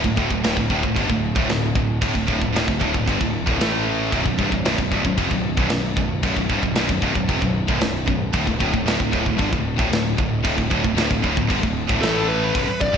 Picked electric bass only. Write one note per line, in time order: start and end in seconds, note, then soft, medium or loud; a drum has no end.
0.04 0.16 D1 medium
0.17 0.29 D1 medium
0.31 0.43 D1 medium
0.44 0.56 D1 loud
0.57 0.69 D1 medium
0.70 0.83 D1 loud
0.83 0.96 D1 medium
0.96 1.09 G1 medium
1.10 1.34 D1 medium
1.36 1.48 D1 loud
1.50 1.74 D1 medium
1.75 2.00 D1 medium
2.02 2.14 D1 medium
2.15 2.27 D1 medium
2.29 2.41 D1 loud
2.42 2.54 D1 medium
2.56 2.68 D1 medium
2.68 2.80 D1 medium
2.81 2.93 D1 medium
2.94 3.07 D1 medium
3.07 3.20 G1 medium
3.21 3.45 D1 medium
3.47 3.59 D1 medium
3.60 4.09 A1 medium
4.12 4.25 B0 medium
4.26 4.38 B0 medium
4.39 4.51 C1 medium
4.52 4.65 B0 medium
4.65 4.78 B0 medium
4.78 4.91 B0 medium
4.92 5.04 C1 medium
5.05 5.17 B0 medium
5.18 5.30 F1 loud
5.31 5.56 B0 medium
5.58 5.70 B0 medium
5.72 5.96 B0 medium
5.97 6.21 B0 medium
6.24 6.36 B0 medium
6.37 6.49 B0 medium
6.50 6.62 C1 medium
6.63 6.75 B0 medium
6.78 6.89 B0 medium
6.89 7.02 B0 medium
7.02 7.15 C1 medium
7.15 7.28 B0 medium
7.29 7.41 F1 medium
7.42 7.66 B0 medium
7.68 7.80 B0 medium
7.81 8.06 B0 medium
8.08 8.32 B0 medium
8.34 8.46 D1 loud
8.47 8.60 D1 medium
8.61 8.73 D1 medium
8.74 8.86 D1 medium
8.86 8.99 D1 medium
9.00 9.12 D1 medium
9.13 9.26 D1 medium
9.26 9.39 D1 medium
9.39 9.52 G1 medium
9.53 9.77 D1 medium
9.79 9.91 D1 medium
9.92 10.16 D1 medium
10.18 10.43 D1 medium
10.45 10.57 D1 loud
10.58 10.70 D1 medium
10.71 10.83 D1 medium
10.85 10.97 D1 medium
10.97 11.09 D1 loud
11.11 11.23 D1 medium
11.24 11.36 D1 medium
11.37 11.49 D1 medium
11.50 11.62 G1 medium
11.64 11.88 D1 medium
11.89 12.01 D1 medium
12.02 12.51 A1 medium
12.55 12.67 B0 medium
12.68 muted picked electric bass stroke soft
12.82 12.93 B0 medium
12.94 12.97 C1 medium